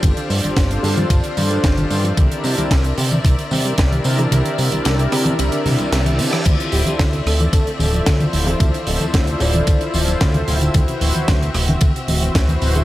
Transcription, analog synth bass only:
X:1
M:4/4
L:1/16
Q:1/4=112
K:Dm
V:1 name="Analog synth bass" clef=bass
G,,, z G,, G,,, G,,,2 G,,2 G,,, z G,,2 G,,,2 G,,2 | C,, z C, C,, C,,2 C,2 C,, z C,2 C,,2 C,2 | C,, z C, C,, C,,2 C,2 C,, z C, C,, C,,2 C, z | D,, z D,,, D,, D,,2 D,,,2 D,, z D,,,2 D,,2 D,,,2 |
D,, z D,,, D,, D,,2 D,,,2 D,, z D,,,2 D,,2 D,,,2 | D,, z D,,, D,, D,,2 D,,,2 D,, z D,,,2 D,,2 D,,,2 |]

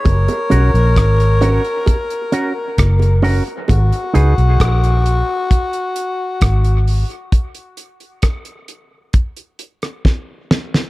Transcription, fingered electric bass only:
X:1
M:4/4
L:1/16
Q:1/4=66
K:G#m
V:1 name="Fingered electric bass" clef=bass
F,,, z B,,, A,,, G,,,3 z4 z F,,,3 z | G,,, z C,, B,,, A,,,3 z4 z G,,,3 z | z16 |]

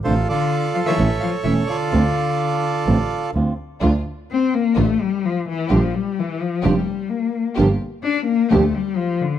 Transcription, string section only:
X:1
M:4/4
L:1/8
Q:1/4=128
K:Dm
V:1 name="String section"
z8 | z8 | [A,DF] z3 [A,DF] z3 | [B,DG] z3 [B,DG] z3 |
[B,FG] z3 [B,FG] z3 |]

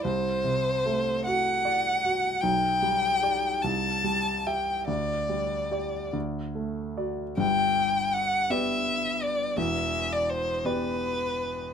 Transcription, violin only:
X:1
M:6/8
L:1/16
Q:3/8=51
K:G
V:1 name="Violin"
c6 f6 | g6 a4 g2 | d6 z6 | g4 f2 e4 d2 |
e3 d c2 B6 |]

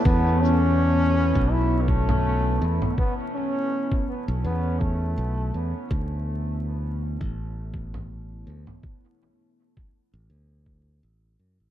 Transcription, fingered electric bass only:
X:1
M:4/4
L:1/16
Q:"Swing 16ths" 1/4=82
K:D
V:1 name="Fingered electric bass" clef=bass
E,,6- E,, B,,,6- B,,, E,, z | z6 z B,,, E,,4 B,,,2 E,, z | D,,6- D,, A,,,6- A,,, D,, z | z6 z A,,, D,,4 A,,,2 F,, A,,, |]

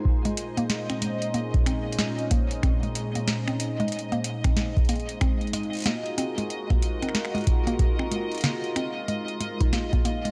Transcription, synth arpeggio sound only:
X:1
M:4/4
L:1/16
Q:"Swing 16ths" 1/4=93
K:Bbm
V:1 name="Synth arpeggio sound"
z A, z B, z C A, z B, z C z A, z B, z | C A, z B, z C z A, z B, z C A, z B, z | C z A, z B, z C A, z B, z C z A, z B, | z C A, z B, z C z A, z A, E B, B, B, A, |]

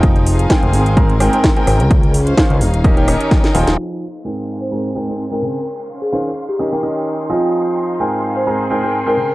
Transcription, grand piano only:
X:1
M:4/4
L:1/16
Q:"Swing 16ths" 1/4=128
K:Ab
V:1 name="Grand piano"
[F,EAcf]4 [A,,CABg]4 [A,,CABb] z [A,,CABg] [A,,CABg] z [A,,CABg] [D,CABg] z | z4 [E,DAcf] z3 [E,DGBe] [E,DGBg] [E,DGBe]4 [F,EAcf]2- | [F,EAcf]2 z2 [A,,CABg]4 [A,,CABb] z [A,,CABg] [A,,CABg] z [A,,CABg] [D,CABg] z | z4 [E,DAcf] z3 [E,DGBe] [E,DGBg] [E,DGBe]4 [F,CFAe]2- |
[F,CFAe]4 [A,,CABg]4 [A,,CABb] z [A,,CABg] [A,,CABg] z [A,,CABg] [D,CABg] z |]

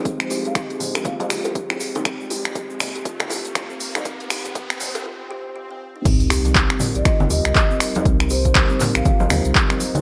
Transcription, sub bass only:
X:1
M:4/4
L:1/16
Q:"Swing 16ths" 1/4=120
K:Cm
V:1 name="Sub bass" clef=bass
z16 | z16 | z16 | C,,4- C,, z2 B,,, z G,,, E,, C,, z4 |
C,,4- C,, z2 B,,, z G,,, E,, C,, z4 |]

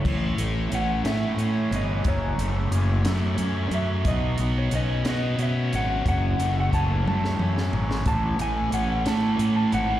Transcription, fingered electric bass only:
X:1
M:6/8
L:1/8
Q:3/8=60
K:Alyd
V:1 name="Fingered electric bass" clef=bass
A,,, A,,, A,,, A,, A,, =G,,, | F,,, F,,, F,,, F,, F,, F,, | B,,, B,,, B,,, B,, B,, G,,, | F,,, F,,, F,,, F,, F,, G,,, |
A,,, A,,, A,,, A,, A,, G,,, |]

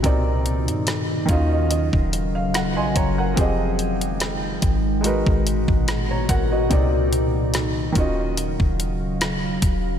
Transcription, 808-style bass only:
X:1
M:4/4
L:1/16
Q:"Swing 16ths" 1/4=72
K:Eb
V:1 name="808-style bass" clef=bass
C,,3 G,,3 E,,3 E,,,4 B,,, _G,,,2 | F,,,6 A,,,3 A,,,2 A,,,3 A,,,2 | C,,6 E,,,3 E,,,4- E,,, E,,,2 |]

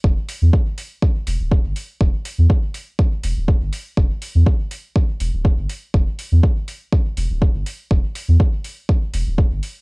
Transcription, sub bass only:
X:1
M:4/4
L:1/16
Q:"Swing 16ths" 1/4=122
K:Em
V:1 name="Sub bass" clef=bass
E,,, z2 E,, z6 E,,, D,,, z G,,, z2 | E,,, z2 E,, z6 E,,, D,,, z G,,, z2 | E,,, z2 E,, z6 E,,, D,,, z G,,, z2 | E,,, z2 E,, z6 E,,, D,,, z G,,, z2 |
E,,, z2 E,, z6 E,,, D,,, z G,,, z2 |]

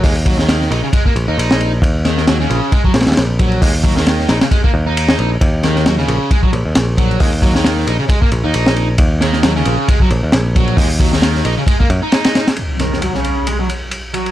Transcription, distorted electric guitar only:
X:1
M:4/4
L:1/16
Q:"Swing 16ths" 1/4=134
K:Ebm
V:1 name="Distorted electric guitar" clef=bass
A, z G, E,3 E D, A, B, z E4 z | z2 E,2 G, D,3 A, G, z4 G,2 | A, z G, E,3 E D, A, B, z E4 z | z2 E,2 G, D,3 A, G, z4 G,2 |
A, z G, E,3 E D, A, B, z E4 z | z2 E,2 G, D,3 A, G, z4 G,2 | A, z G, E,3 E D, A, B, z E4 z | z2 E,2 G, D,3 A, G, z4 G,2 |]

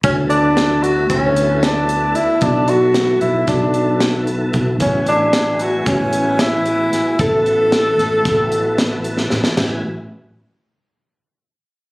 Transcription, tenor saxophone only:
X:1
M:9/8
L:1/8
Q:3/8=75
K:A
V:1 name="Tenor saxophone"
C D2 F C2 D2 E | D F2 E D3 z2 | C D2 F C2 E3 | A6- A z2 |
z8 z |]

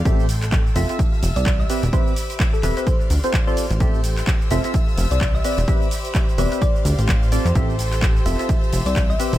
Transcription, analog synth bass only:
X:1
M:4/4
L:1/16
Q:"Swing 16ths" 1/4=128
K:Flyd
V:1 name="Analog synth bass" clef=bass
A,,,4- A,,, z F,,, z3 F,,, C,,3 z E,,, | z6 E,,, z3 D,, z4 A,,,- | A,,,4 z2 F,,, z3 F,,, C,,3 z E,,, | z6 E,,, z3 D,, A,,,4 F,, |
A,,,4- A,,, z F,,, z3 F,,, C,,3 z E,,, |]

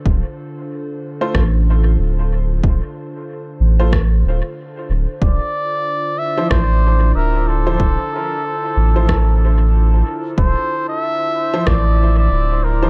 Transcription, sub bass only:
X:1
M:4/4
L:1/8
Q:"Swing 16ths" 1/4=93
K:Dm
V:1 name="Sub bass" clef=bass
D,,, z3 A,,,2 D,,,2 | D,,, z2 A,,,2 D,,, z D,,, | D,,, z3 A,,,2 D,,,2 | D,,, z2 A,,,4 z |
D,,, z3 A,,,2 D,,,2 |]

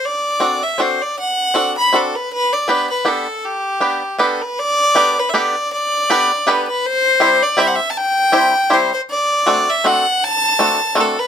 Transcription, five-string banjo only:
X:1
M:3/4
L:1/8
Q:"Swing" 1/4=159
K:G
V:1 name="Five-string banjo"
z2 [CDFA] z [CDFA] z | z2 [CDFA] z [CDFA] z | z2 [B,DGB] z [B,DGB] z | z2 [B,DGB] z [B,DGB] z |
z2 [B,DGAB] z [B,DGAB] z | z2 [B,DGAB] z [B,DGAB] z | z2 [G,CEGc] z [G,CEGc] z | z2 [G,CEGc] z [G,CEGc] z |
z2 [A,CDFA] z [A,CDFA] z | z2 [A,CDFA] z [A,CDFA] z |]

